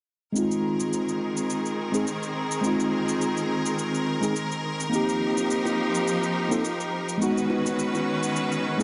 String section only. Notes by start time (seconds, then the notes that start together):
0.35 D#3 C4 G#4 A#4
4.92 F3 D#4 G4
7.20 D#3 C#4 F#4 B4